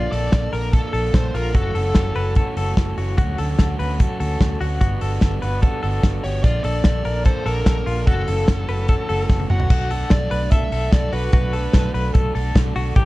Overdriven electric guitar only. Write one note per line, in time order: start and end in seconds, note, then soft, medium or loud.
0.00 0.12 A#2 medium
0.00 0.12 D3 medium
0.00 0.12 F3 medium
0.00 0.12 A#3 medium
0.00 0.11 D4 medium
0.00 0.11 A4 medium
0.12 0.30 A#2 medium
0.12 0.31 D3 medium
0.12 0.31 F3 medium
0.12 0.32 A#3 medium
0.12 0.32 D4 medium
0.12 0.32 A4 medium
0.32 0.52 A#2 medium
0.32 0.53 D3 medium
0.32 0.53 F3 medium
0.32 0.53 A#3 medium
0.32 0.52 D4 medium
0.32 0.51 A4 medium
0.52 0.71 F3 soft
0.52 0.72 A#3 soft
0.52 0.73 D4 soft
0.52 0.73 A4 soft
0.72 0.93 F3 medium
0.72 0.94 A#3 medium
0.72 0.93 D4 medium
0.72 0.92 A4 medium
0.93 1.35 F3 soft
0.93 1.35 A#3 soft
0.93 1.34 D4 soft
0.93 1.33 A4 medium
1.34 1.54 F3 soft
1.34 1.55 A#3 soft
1.34 1.55 D4 soft
1.34 1.54 A4 medium
1.54 1.75 F#2 medium
1.54 1.75 C#3 medium
1.54 1.75 E3 medium
1.54 1.75 A3 medium
1.54 1.74 C#4 medium
1.54 1.74 F#4 medium
1.75 1.93 F#2 soft
1.75 1.94 C#3 medium
1.75 1.94 E3 medium
1.75 1.95 A3 medium
1.75 1.95 C#4 medium
1.75 1.95 F#4 medium
1.95 2.16 F#2 medium
1.95 2.16 C#3 medium
1.95 2.16 E3 medium
1.95 2.15 A3 medium
1.95 2.15 C#4 medium
1.95 2.14 F#4 medium
2.15 2.34 E3 soft
2.15 2.36 A3 soft
2.15 2.36 C#4 medium
2.15 2.36 F#4 medium
2.36 2.56 E3 medium
2.36 2.57 A3 medium
2.36 2.56 C#4 medium
2.36 2.55 F#4 medium
2.56 2.98 E3 soft
2.56 2.98 A3 soft
2.56 2.96 C#4 medium
2.56 2.96 F#4 medium
2.97 3.17 E3 soft
2.97 3.17 A3 soft
2.97 3.18 C#4 medium
2.97 3.18 F#4 medium
3.17 3.38 D3 medium
3.17 3.38 F#3 medium
3.17 3.37 A3 medium
3.17 3.37 C#4 medium
3.17 3.37 F#4 medium
3.38 3.57 D3 medium
3.38 3.58 F#3 medium
3.38 3.58 A3 medium
3.38 3.58 C#4 medium
3.38 3.58 F#4 medium
3.58 3.79 D3 medium
3.58 3.79 F#3 medium
3.58 3.79 A3 medium
3.58 3.78 C#4 medium
3.58 3.77 F#4 medium
3.78 3.98 A3 soft
3.78 3.99 C#4 medium
3.78 3.99 F#4 medium
3.98 4.19 F#3 medium
3.98 4.20 A3 medium
3.98 4.19 C#4 medium
3.98 4.18 F#4 medium
4.19 4.61 A3 soft
4.19 4.60 C#4 soft
4.19 4.59 F#4 medium
4.60 4.81 A3 soft
4.60 4.81 C#4 soft
4.60 4.81 F#4 medium
4.80 5.01 G3 medium
4.80 5.01 B3 medium
4.80 5.00 D4 medium
4.80 5.00 F#4 medium
5.01 5.19 G3 medium
5.01 5.20 B3 medium
5.01 5.21 D4 medium
5.01 5.21 F#4 medium
5.21 5.42 G3 medium
5.21 5.42 B3 medium
5.21 5.42 D4 medium
5.21 5.41 F#4 medium
5.42 5.61 B3 soft
5.42 5.62 D4 soft
5.42 5.62 F#4 medium
5.62 5.82 G3 medium
5.62 5.83 B3 medium
5.62 5.82 D4 medium
5.62 5.80 F#4 medium
5.81 6.24 B3 soft
5.81 6.23 D4 medium
5.81 6.22 F#4 medium
6.23 6.44 B3 soft
6.23 6.43 D4 soft
6.23 6.44 F#4 medium
6.43 6.64 A#2 medium
6.43 6.64 D3 medium
6.43 6.64 F3 medium
6.43 6.64 A#3 medium
6.43 6.63 D4 medium
6.43 6.63 A4 medium
6.64 6.84 A#2 medium
6.64 6.84 D3 medium
6.64 6.85 F3 medium
6.64 6.85 A#3 medium
6.64 6.85 D4 medium
6.64 6.85 A4 medium
6.85 7.05 A#2 medium
6.85 7.05 D3 medium
6.85 7.06 F3 medium
6.85 7.05 A#3 medium
6.85 7.05 D4 medium
6.85 7.04 A4 medium
7.05 7.24 F3 soft
7.05 7.25 A#3 soft
7.05 7.26 D4 soft
7.05 7.25 A4 soft
7.25 7.46 F3 medium
7.25 7.46 A#3 medium
7.25 7.45 D4 medium
7.25 7.44 A4 medium
7.45 7.88 F3 soft
7.45 7.87 A#3 soft
7.45 7.86 D4 medium
7.45 7.86 A4 medium
7.87 8.08 F3 soft
7.87 8.08 A#3 soft
7.87 8.07 D4 soft
7.87 8.07 A4 soft
8.07 8.28 F#2 medium
8.07 8.27 C#3 medium
8.07 8.27 E3 medium
8.07 8.27 A3 medium
8.07 8.27 C#4 medium
8.07 8.26 F#4 medium
8.27 8.47 F#2 medium
8.27 8.47 C#3 medium
8.27 8.47 E3 medium
8.27 8.47 A3 medium
8.27 8.48 C#4 medium
8.27 8.48 F#4 medium
8.48 8.68 F#2 medium
8.48 8.68 C#3 medium
8.48 8.69 E3 medium
8.48 8.68 A3 medium
8.48 8.67 C#4 medium
8.48 8.67 F#4 medium
8.68 8.87 E3 soft
8.68 8.88 A3 soft
8.68 8.88 C#4 soft
8.68 8.89 F#4 medium
8.88 9.09 E3 medium
8.88 9.09 A3 medium
8.88 9.08 C#4 medium
8.88 9.07 F#4 medium
9.08 9.50 E3 soft
9.08 9.50 A3 soft
9.08 9.49 C#4 medium
9.08 9.49 F#4 medium
9.49 9.70 E3 soft
9.49 9.70 A3 soft
9.49 9.70 C#4 medium
9.49 9.70 F#4 medium
9.70 9.90 B2 medium
9.70 9.91 F#3 medium
9.70 9.91 A3 medium
9.70 9.91 D4 medium
9.70 9.89 A4 medium
9.90 10.11 A3 soft
9.90 10.11 D4 soft
9.90 10.11 A4 medium
10.11 10.72 F#3 medium
10.11 10.74 A3 medium
10.11 10.72 D4 medium
10.11 10.72 A4 medium
10.72 10.92 A3 soft
10.72 10.93 D4 soft
10.72 10.93 A4 soft
10.92 11.13 F#3 medium
10.92 11.13 A3 medium
10.92 11.12 D4 medium
10.92 11.11 A4 medium
11.12 11.33 A3 soft
11.12 11.33 D4 soft
11.12 11.33 A4 medium
11.33 11.54 B2 medium
11.33 11.54 F#3 medium
11.33 11.54 A3 medium
11.33 11.54 D4 medium
11.33 11.52 A4 medium
11.53 11.74 A3 soft
11.53 11.75 D4 medium
11.53 11.74 A4 medium
11.74 12.35 F#3 medium
11.74 12.37 A3 medium
11.74 12.35 D4 medium
11.74 12.35 A4 medium
12.35 12.55 A3 medium
12.35 12.56 D4 medium
12.35 12.56 A4 medium
12.55 12.76 F#3 medium
12.55 12.76 A3 medium
12.55 12.76 D4 medium
12.55 12.75 A4 medium
12.76 12.96 A3 soft
12.76 12.97 D4 soft
12.76 12.96 A4 medium
12.96 13.05 A2 medium
12.96 13.05 E3 medium
12.96 13.05 G3 medium
12.96 13.05 A3 medium
12.96 13.05 C#4 medium
12.96 13.05 A4 medium